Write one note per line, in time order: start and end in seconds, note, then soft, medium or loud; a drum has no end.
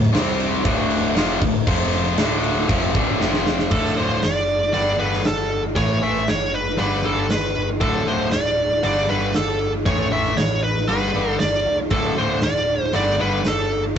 0.00 0.12 D1 medium
0.00 snare soft
0.12 0.62 C2 loud
0.12 0.64 C3 loud
0.12 0.64 G3 loud
0.12 0.64 C4 loud
0.12 snare loud
0.12 crash medium
0.40 crash medium
0.64 1.13 D1 medium
0.64 1.15 D2 medium
0.64 1.15 A2 loud
0.64 1.15 D3 loud
0.64 kick loud
0.64 crash medium
0.90 crash medium
1.16 1.40 F1 loud
1.16 1.41 F2 loud
1.16 1.41 C3 medium
1.16 1.41 F3 loud
1.16 snare loud
1.16 crash medium
1.42 1.66 D1 medium
1.42 1.62 D2 medium
1.42 1.62 A2 medium
1.42 kick loud
1.42 crash medium
1.67 2.15 F1 medium
1.67 2.17 F2 loud
1.67 2.18 C3 medium
1.67 2.18 F3 loud
1.67 kick loud
1.67 crash medium
1.92 snare soft
1.92 crash medium
2.06 snare soft
2.18 2.66 D1 loud
2.18 2.68 D2 medium
2.18 2.68 A2 medium
2.18 2.69 D3 loud
2.18 snare loud
2.18 crash medium
2.44 crash medium
2.68 2.93 F1 medium
2.68 2.93 F2 medium
2.68 2.94 C3 loud
2.68 2.94 F3 loud
2.68 kick loud
2.68 crash medium
2.94 3.19 D1 medium
2.94 3.19 D2 medium
2.94 3.20 A2 medium
2.94 3.20 D3 medium
2.94 kick loud
2.94 crash medium
3.20 3.69 F1 loud
3.20 3.70 F2 loud
3.20 3.70 C3 loud
3.20 3.71 F3 loud
3.20 snare medium
3.34 snare medium
3.46 snare medium
3.59 snare medium
3.71 3.96 D1 medium
3.71 3.92 D2 medium
3.71 3.92 A2 medium
3.71 3.92 D3 medium
3.71 3.95 A4 medium
3.71 kick loud
3.71 crash loud
3.96 4.22 D1 medium
3.96 4.17 D2 medium
3.96 4.18 A2 medium
3.96 4.18 D3 medium
3.96 4.24 C5 medium
4.22 4.71 F#1 medium
4.22 4.72 D5 medium
4.22 snare loud
4.22 open hi-hat medium
4.73 4.98 G1 medium
4.73 4.94 G2 medium
4.73 4.94 D3 medium
4.73 4.95 G3 loud
4.73 4.98 D5 loud
4.73 open hi-hat medium
4.98 5.25 G1 medium
4.98 5.20 G2 medium
4.98 5.20 D3 medium
4.98 5.20 G3 medium
4.98 5.26 B4 medium
5.13 snare soft
5.25 5.74 G1 medium
5.25 5.61 A4 medium
5.25 snare loud
5.25 open hi-hat medium
5.75 6.25 A1 medium
5.75 5.96 A2 medium
5.75 5.97 E3 loud
5.75 5.97 A3 loud
5.75 6.00 C#5 medium
5.75 kick loud
5.75 open hi-hat medium
6.01 6.22 A2 medium
6.01 6.22 E3 medium
6.01 6.22 A3 medium
6.01 6.29 E5 medium
6.28 6.77 F#1 loud
6.28 6.55 C#5 medium
6.28 snare loud
6.28 open hi-hat soft
6.55 6.78 B4 medium
6.77 7.04 G1 medium
6.77 6.99 G2 medium
6.77 6.99 D3 medium
6.77 6.99 G3 medium
6.77 7.03 B4 loud
6.77 open hi-hat medium
7.03 7.30 G1 medium
7.03 7.24 G2 medium
7.03 7.25 D3 medium
7.03 7.25 G3 loud
7.03 7.29 A4 medium
7.30 7.55 G1 medium
7.30 7.66 B4 medium
7.30 snare loud
7.30 open hi-hat soft
7.57 7.80 G1 medium
7.80 8.05 D1 medium
7.80 8.01 D2 medium
7.80 8.01 A2 medium
7.80 8.02 D3 medium
7.80 8.08 A4 medium
7.80 kick loud
7.80 open hi-hat medium
8.06 8.32 D1 medium
8.06 8.27 D2 medium
8.06 8.27 A2 loud
8.06 8.28 D3 loud
8.06 8.32 C5 medium
8.32 8.81 D1 medium
8.32 8.83 D5 medium
8.32 snare loud
8.32 open hi-hat soft
8.83 9.08 G1 medium
8.83 9.04 G2 medium
8.83 9.04 D3 loud
8.83 9.05 G3 medium
8.83 9.09 D5 loud
8.83 open hi-hat medium
9.09 9.33 G1 medium
9.09 9.30 G2 medium
9.09 9.30 D3 medium
9.09 9.30 G3 medium
9.09 9.34 B4 medium
9.34 9.83 G1 medium
9.34 9.71 A4 medium
9.34 snare loud
9.34 open hi-hat medium
9.86 10.35 A1 medium
9.86 10.07 A2 medium
9.86 10.07 E3 medium
9.86 10.07 A3 loud
9.86 10.10 C#5 medium
9.86 kick loud
9.86 open hi-hat medium
10.11 10.32 A2 medium
10.11 10.32 E3 loud
10.11 10.33 A3 medium
10.11 10.36 E5 medium
10.37 10.86 A1 loud
10.37 10.61 C#5 medium
10.37 snare loud
10.37 open hi-hat medium
10.64 10.87 B4 medium
10.89 11.13 G1 medium
10.89 11.09 G2 medium
10.89 11.10 D3 medium
10.89 11.10 G3 loud
10.89 11.39 B4 medium
10.89 open hi-hat soft
11.14 11.38 G1 medium
11.14 11.35 G2 medium
11.14 11.35 D3 medium
11.14 11.35 G3 medium
11.39 11.64 G1 medium
11.39 11.76 D5 medium
11.39 snare loud
11.39 open hi-hat medium
11.66 11.90 C2 medium
11.90 12.15 D1 medium
11.90 12.12 D2 medium
11.90 12.12 A2 medium
11.90 12.12 D3 medium
11.90 12.18 A4 medium
11.90 kick loud
11.90 open hi-hat medium
12.16 12.41 D1 medium
12.16 12.37 D2 medium
12.16 12.37 A2 medium
12.16 12.38 D3 medium
12.16 12.41 C5 medium
12.42 12.91 D1 loud
12.42 12.91 D5 medium
12.42 snare loud
12.42 open hi-hat medium
12.93 13.18 G1 medium
12.93 13.14 G2 medium
12.93 13.14 D3 medium
12.93 13.14 G3 loud
12.93 13.21 D5 medium
12.93 open hi-hat medium
13.19 13.44 G1 medium
13.19 13.40 G2 medium
13.19 13.40 D3 medium
13.19 13.40 G3 medium
13.19 13.47 B4 medium
13.45 13.93 G1 medium
13.45 13.82 A4 medium
13.45 snare loud
13.45 open hi-hat medium